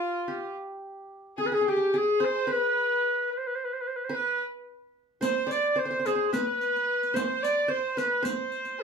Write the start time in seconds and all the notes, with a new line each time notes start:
Already playing: F4 G4
0.28 G4
1.38 G#4
1.45 G#4 B4
1.52 G#4
1.61 G#4
1.66 G4 G#4
1.76 G#4
1.94 G#4
2.20 C5
2.25 C5
2.47 B4
2.52 B4
3.32 B4
3.38 C5
3.47 B4
3.56 C5
3.65 B4
3.73 C5
3.81 B4
3.88 C5
3.96 B4
4.05 C5
4.09 B4
4.16 B4
5.21 C5, riq
5.47 D5
5.51 D5, riq
5.71 D5
5.76 C5
5.85 C5
5.91 C5
5.99 C5
6.05 G#4 C5, riq
6.15 C5
6.27 C5
6.32 B4, riq
6.61 riq
6.76 riq
7.03 riq
7.14 C5, riq
7.42 D5, riq
7.68 C5
7.96 B4, riq
8.22 C5, riq
8.52 riq
8.65 riq
8.79 G#4